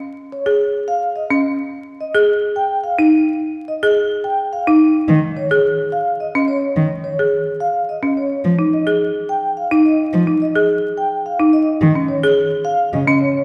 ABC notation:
X:1
M:3/4
L:1/16
Q:1/4=107
K:Ab
V:1 name="Vibraphone"
z2 d z3 f z e z3 | z2 e z3 g z f z3 | z2 e z3 g z f z3 | z2 d z3 f z e z d z |
z2 d z3 f z e z d z | z2 e z3 g z f z e z | z2 e z3 g z f z e z | z2 d z3 f z e z d z |]
V:2 name="Marimba"
z3 A z4 z D z2 | z3 A z4 z E z2 | z3 A z4 z E z2 | z3 A z4 z D z2 |
z3 A z4 z D z2 | z E z A z4 z E z2 | z E z A z4 z E z2 | z D z A z4 z D z2 |]
V:3 name="Cello" clef=bass
z12 | z12 | z12 | E, z8 z3 |
E, z8 z3 | F, z8 z3 | F, z8 z3 | E, z6 z D, z3 |]